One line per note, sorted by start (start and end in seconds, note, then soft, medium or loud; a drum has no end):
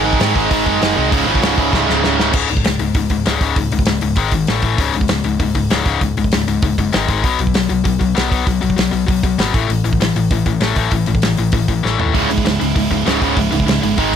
0.00 1.11 G#2 medium
0.00 1.11 D#3 loud
0.00 1.13 G#3 loud
0.00 0.21 G#3 medium
0.00 1.11 C4 medium
0.00 1.11 D#4 medium
0.00 1.14 G#4 loud
0.05 0.20 G#1 medium
0.05 0.19 G#2 medium
0.05 0.20 D#3 medium
0.13 kick medium
0.20 0.36 G#2 medium
0.20 0.35 G#2 medium
0.20 0.35 D#3 medium
0.20 0.36 G#3 loud
0.20 snare loud
0.20 open hi-hat medium
0.35 0.49 G#1 medium
0.35 0.50 G#2 medium
0.35 0.51 D#3 medium
0.35 0.52 G#3 loud
0.35 kick loud
0.51 0.65 G#1 medium
0.51 0.67 G#2 loud
0.51 0.66 D#3 loud
0.51 0.66 G#3 loud
0.51 kick loud
0.51 open hi-hat medium
0.66 0.80 F#1 medium
0.66 0.80 G#2 medium
0.66 0.81 D#3 medium
0.66 0.83 G#3 medium
0.66 kick medium
0.82 0.96 F#1 medium
0.82 0.96 G#2 medium
0.82 0.96 D#3 loud
0.82 0.96 G#3 loud
0.82 snare loud
0.82 open hi-hat medium
0.96 1.11 C2 medium
0.96 1.10 G#2 medium
0.96 1.11 D#3 medium
0.96 1.12 G#3 medium
1.11 1.26 C#1 medium
1.11 1.28 C#2 loud
1.11 2.33 C#2 medium
1.11 1.27 G#2 loud
1.11 2.34 G#2 medium
1.11 1.27 C#3 loud
1.11 2.34 C#3 medium
1.11 2.34 G#3 medium
1.11 2.35 E4 loud
1.11 kick loud
1.11 open hi-hat medium
1.27 1.41 G#1 medium
1.27 1.40 C#2 medium
1.27 1.41 G#2 medium
1.27 1.42 C#3 medium
1.35 kick medium
1.41 1.56 C#1 medium
1.41 1.58 C#2 medium
1.41 1.57 G#2 medium
1.41 1.56 C#3 loud
1.41 snare loud
1.41 open hi-hat medium
1.57 1.72 C#1 medium
1.57 1.71 C#2 medium
1.57 1.71 G#2 medium
1.57 1.72 C#3 loud
1.57 kick medium
1.72 1.87 C#1 medium
1.72 1.87 C#2 loud
1.72 1.87 G#2 loud
1.72 1.86 C#3 loud
1.72 kick loud
1.72 snare medium
1.87 2.02 C#1 medium
1.87 2.01 C#2 medium
1.87 2.02 G#2 medium
1.87 2.03 C#3 medium
1.87 snare medium
2.02 2.33 C#1 medium
2.02 2.19 C#2 medium
2.02 2.17 G#2 medium
2.02 2.16 C#3 loud
2.02 snare medium
2.18 2.32 C#2 medium
2.18 2.32 G#2 medium
2.18 2.33 C#3 medium
2.18 snare loud
2.33 2.45 C#1 medium
2.33 2.48 C#2 medium
2.33 2.48 G#2 medium
2.33 2.49 C#3 loud
2.33 kick loud
2.33 crash loud
2.49 2.61 C#1 medium
2.49 2.63 C#2 medium
2.49 2.64 G#2 medium
2.49 open hi-hat medium
2.57 kick medium
2.64 2.76 C#1 medium
2.64 2.78 C#2 medium
2.64 2.78 G#2 medium
2.64 snare loud
2.64 open hi-hat medium
2.79 2.91 C#1 medium
2.79 2.93 C#2 medium
2.79 2.94 G#2 medium
2.79 open hi-hat medium
2.95 3.06 C#1 medium
2.95 3.09 C#2 medium
2.95 3.09 G#2 medium
2.95 kick loud
2.95 open hi-hat medium
3.10 3.22 C#1 medium
3.10 3.24 C#2 medium
3.10 3.25 G#2 medium
3.10 kick medium
3.10 open hi-hat medium
3.25 3.37 C#1 medium
3.25 3.39 C#2 medium
3.25 3.40 G#2 medium
3.25 3.41 C#3 medium
3.25 snare loud
3.25 open hi-hat medium
3.40 3.52 C#1 medium
3.40 3.55 C#2 medium
3.40 3.56 G#2 loud
3.40 3.56 C#3 loud
3.40 kick medium
3.40 open hi-hat medium
3.56 3.68 C#1 medium
3.56 3.70 C#2 medium
3.56 3.71 G#2 medium
3.56 kick medium
3.56 open hi-hat medium
3.72 3.83 C#1 medium
3.72 3.86 C#2 medium
3.72 3.86 G#2 medium
3.72 open hi-hat medium
3.79 kick medium
3.86 3.99 C#1 medium
3.86 4.01 C#2 medium
3.86 4.01 G#2 medium
3.86 snare loud
3.86 open hi-hat medium
4.01 4.14 C#1 medium
4.01 4.16 C#2 medium
4.01 4.16 G#2 medium
4.01 open hi-hat medium
4.16 4.28 G#1 medium
4.16 4.32 G#2 loud
4.16 4.32 D#3 loud
4.16 4.32 G#3 loud
4.16 kick loud
4.16 open hi-hat medium
4.31 4.44 G#1 medium
4.31 4.47 G#2 medium
4.31 4.47 D#3 medium
4.31 kick medium
4.31 open hi-hat medium
4.47 4.60 A1 medium
4.47 4.63 A2 medium
4.47 4.63 E3 medium
4.47 4.64 A3 loud
4.47 snare loud
4.47 open hi-hat medium
4.62 4.75 A1 medium
4.62 4.78 A2 medium
4.62 4.79 E3 loud
4.62 4.79 A3 loud
4.62 kick medium
4.62 open hi-hat medium
4.78 4.90 C#1 medium
4.78 4.93 C#2 loud
4.78 4.94 G#2 medium
4.78 4.94 C#3 medium
4.78 kick loud
4.78 open hi-hat medium
4.94 5.06 C#1 medium
4.94 5.08 C#2 medium
4.94 5.08 G#2 medium
4.94 open hi-hat medium
5.01 kick medium
5.08 5.21 C#1 medium
5.08 5.23 C#2 medium
5.08 5.23 G#2 medium
5.08 snare loud
5.08 open hi-hat medium
5.24 5.36 C#1 medium
5.24 5.38 C#2 medium
5.24 5.38 G#2 medium
5.24 open hi-hat medium
5.39 5.51 C#1 medium
5.39 5.54 C#2 medium
5.39 5.54 G#2 medium
5.39 kick loud
5.39 open hi-hat medium
5.55 5.67 C#1 medium
5.55 5.69 C#2 medium
5.55 5.69 G#2 medium
5.55 kick medium
5.55 open hi-hat medium
5.70 5.82 C#1 medium
5.70 5.84 C#2 medium
5.70 5.86 G#2 medium
5.70 5.86 C#3 medium
5.70 snare loud
5.70 open hi-hat medium
5.86 5.97 C#1 medium
5.86 6.00 C#2 medium
5.86 6.00 G#2 medium
5.86 6.01 C#3 loud
5.86 kick medium
5.86 open hi-hat medium
6.01 6.13 C#1 medium
6.01 6.15 C#2 medium
6.01 6.15 G#2 medium
6.01 kick medium
6.01 open hi-hat medium
6.17 6.28 C#1 medium
6.17 6.31 C#2 medium
6.17 6.31 G#2 medium
6.17 open hi-hat medium
6.24 kick medium
6.32 6.43 C#1 medium
6.32 6.46 C#2 medium
6.32 6.46 G#2 medium
6.32 snare loud
6.32 open hi-hat medium
6.47 6.59 C#1 medium
6.47 6.61 C#2 medium
6.47 6.61 G#2 medium
6.47 open hi-hat medium
6.62 6.74 C#1 medium
6.62 6.77 C#2 medium
6.62 6.77 G#2 medium
6.62 kick loud
6.62 open hi-hat medium
6.78 6.89 F#1 medium
6.78 6.92 C#2 medium
6.78 6.91 G#2 medium
6.78 kick medium
6.78 open hi-hat medium
6.93 7.05 G#1 medium
6.93 7.07 G#2 medium
6.93 7.08 D#3 medium
6.93 7.08 G#3 loud
6.93 snare loud
6.93 open hi-hat medium
7.08 7.24 G#1 medium
7.08 7.23 G#2 medium
7.08 7.23 D#3 medium
7.08 7.24 G#3 medium
7.08 kick medium
7.08 open hi-hat medium
7.24 7.35 B1 medium
7.24 7.38 B2 medium
7.24 7.39 F#3 medium
7.24 7.39 B3 loud
7.24 kick medium
7.24 open hi-hat medium
7.39 7.51 B1 medium
7.39 7.53 B2 medium
7.39 7.54 F#3 medium
7.39 open hi-hat medium
7.47 kick medium
7.54 7.66 B1 medium
7.54 7.68 B2 medium
7.54 7.68 F#3 medium
7.54 snare loud
7.54 open hi-hat medium
7.69 7.81 B1 medium
7.69 7.83 B2 medium
7.69 7.83 F#3 medium
7.69 open hi-hat medium
7.84 7.97 B1 medium
7.84 7.98 B2 medium
7.84 7.98 F#3 medium
7.84 kick loud
7.84 open hi-hat medium
7.99 8.12 B1 medium
7.99 8.13 B2 medium
7.99 8.14 F#3 medium
7.99 kick medium
7.99 open hi-hat medium
8.15 8.28 B1 medium
8.15 8.29 B2 loud
8.15 8.29 F#3 medium
8.15 8.30 B3 medium
8.15 snare loud
8.15 open hi-hat medium
8.30 8.43 B1 medium
8.30 8.44 B2 medium
8.30 8.45 F#3 loud
8.30 8.46 B3 medium
8.30 kick medium
8.30 open hi-hat medium
8.45 8.58 B1 medium
8.45 8.60 B2 medium
8.45 8.60 F#3 medium
8.45 kick medium
8.45 open hi-hat medium
8.61 8.74 B1 medium
8.61 8.75 B2 medium
8.61 8.75 F#3 medium
8.61 open hi-hat medium
8.70 kick medium
8.76 8.89 B1 medium
8.76 8.90 B2 medium
8.76 8.91 F#3 medium
8.76 snare loud
8.76 open hi-hat medium
8.91 9.04 B1 medium
8.91 9.05 B2 medium
8.91 9.05 F#3 medium
8.91 open hi-hat medium
9.06 9.20 B1 medium
9.06 9.21 B2 medium
9.06 9.21 F#3 medium
9.06 kick loud
9.06 open hi-hat medium
9.23 9.35 B1 medium
9.23 9.37 B2 medium
9.23 9.37 F#3 medium
9.23 kick medium
9.23 open hi-hat medium
9.38 9.50 G#1 medium
9.38 9.53 B2 medium
9.38 9.53 F#3 loud
9.38 9.54 B3 loud
9.38 snare loud
9.38 open hi-hat medium
9.53 9.66 A1 medium
9.53 9.67 A2 medium
9.53 9.67 E3 medium
9.53 9.69 A3 loud
9.53 kick loud
9.53 open hi-hat medium
9.68 9.80 A1 loud
9.68 9.83 A2 medium
9.68 9.83 E3 medium
9.68 open hi-hat medium
9.84 9.96 A1 medium
9.84 9.98 A2 medium
9.84 9.99 E3 medium
9.84 open hi-hat medium
9.93 kick medium
10.00 10.12 A1 medium
10.00 10.14 A2 medium
10.00 10.14 E3 medium
10.00 snare loud
10.00 open hi-hat medium
10.16 10.27 A1 medium
10.16 10.30 A2 medium
10.16 10.30 E3 medium
10.16 open hi-hat medium
10.31 10.42 A1 medium
10.31 10.45 A2 medium
10.31 10.45 E3 medium
10.31 kick loud
10.31 open hi-hat medium
10.46 10.57 A1 medium
10.46 10.59 A2 medium
10.46 10.60 E3 medium
10.46 kick medium
10.46 open hi-hat medium
10.60 10.72 A1 medium
10.60 10.75 A2 medium
10.60 10.76 E3 medium
10.60 10.76 A3 medium
10.60 snare loud
10.60 open hi-hat medium
10.76 10.88 A1 medium
10.76 10.91 A2 medium
10.76 10.92 E3 medium
10.76 10.92 A3 medium
10.76 kick medium
10.76 open hi-hat medium
10.91 11.03 A1 medium
10.91 11.06 A2 medium
10.91 11.06 E3 medium
10.91 kick medium
10.91 open hi-hat medium
11.06 11.19 A1 medium
11.06 11.21 A2 medium
11.06 11.21 E3 medium
11.06 open hi-hat medium
11.15 kick medium
11.22 11.34 A1 medium
11.22 11.37 A2 medium
11.22 11.37 E3 medium
11.22 snare loud
11.22 open hi-hat medium
11.37 11.49 A1 medium
11.37 11.52 A2 medium
11.37 11.52 E3 medium
11.37 open hi-hat medium
11.52 11.64 A1 medium
11.52 11.67 A2 medium
11.52 11.67 E3 medium
11.52 kick loud
11.52 open hi-hat medium
11.68 11.80 A1 medium
11.68 11.82 A2 medium
11.68 11.83 E3 medium
11.68 kick medium
11.68 open hi-hat medium
11.83 11.96 A1 medium
11.83 11.97 A2 medium
11.83 11.98 E3 medium
11.83 11.99 A3 loud
11.83 snare medium
11.98 12.12 D#2 medium
11.98 12.13 A2 medium
11.98 12.14 E3 medium
11.98 12.14 A3 medium
11.98 floor tom medium
12.14 12.26 C#1 medium
12.14 12.28 C#2 medium
12.14 12.60 C#2 medium
12.14 12.28 G#2 medium
12.14 12.60 G#2 medium
12.14 12.60 C#3 medium
12.14 12.30 C#3 loud
12.14 12.59 G#3 medium
12.14 12.59 E4 medium
12.14 kick loud
12.14 open hi-hat medium
12.29 12.42 C#1 medium
12.29 12.44 C#2 medium
12.29 12.44 G#2 medium
12.29 open hi-hat medium
12.38 kick medium
12.45 12.57 C#1 medium
12.45 12.58 C#2 medium
12.45 12.59 G#2 medium
12.45 snare loud
12.45 open hi-hat medium
12.59 12.72 C#1 medium
12.59 12.74 C#2 medium
12.59 13.35 C#2 medium
12.59 12.74 G#2 medium
12.59 13.36 G#2 medium
12.59 13.37 C#3 medium
12.59 13.36 G#3 medium
12.59 13.36 E4 medium
12.59 open hi-hat medium
12.75 12.87 C#1 medium
12.75 12.89 C#2 medium
12.75 12.90 G#2 medium
12.75 kick loud
12.75 open hi-hat medium
12.90 13.02 C#1 medium
12.90 13.04 C#2 medium
12.90 13.05 G#2 medium
12.90 kick medium
12.90 open hi-hat medium
13.05 13.17 C#1 medium
13.05 13.20 C#2 medium
13.05 13.20 G#2 medium
13.05 13.21 C#3 loud
13.05 snare loud
13.05 open hi-hat medium
13.21 13.33 C#1 medium
13.21 13.34 C#2 medium
13.21 13.35 G#2 medium
13.21 13.37 C#3 loud
13.21 kick medium
13.21 open hi-hat medium
13.36 13.48 C#1 medium
13.36 13.49 C#2 medium
13.36 13.82 C#2 medium
13.36 13.50 G#2 medium
13.36 13.82 G#2 medium
13.36 13.82 C#3 loud
13.36 13.81 G#3 loud
13.36 13.80 E4 loud
13.36 kick medium
13.36 open hi-hat medium
13.51 13.64 C#1 medium
13.51 13.65 C#2 medium
13.51 13.66 G#2 medium
13.51 open hi-hat medium
13.60 kick medium
13.66 13.79 C#1 medium
13.66 13.81 C#2 medium
13.66 13.81 G#2 medium
13.66 snare loud
13.66 open hi-hat medium
13.81 13.95 G1 medium
13.81 13.97 C#2 medium
13.81 13.96 C#2 medium
13.81 13.96 G#2 medium
13.81 13.95 G#2 medium
13.81 13.97 C#3 medium
13.81 13.97 G#3 medium
13.81 13.97 E4 medium
13.81 open hi-hat medium
13.96 14.10 G#1 medium
13.96 14.16 G#2 loud
13.96 14.13 G#2 medium
13.96 14.16 D#3 loud
13.96 14.13 D#3 medium
13.96 14.16 G#3 loud
13.96 14.13 G#3 loud
13.96 kick loud
13.96 open hi-hat medium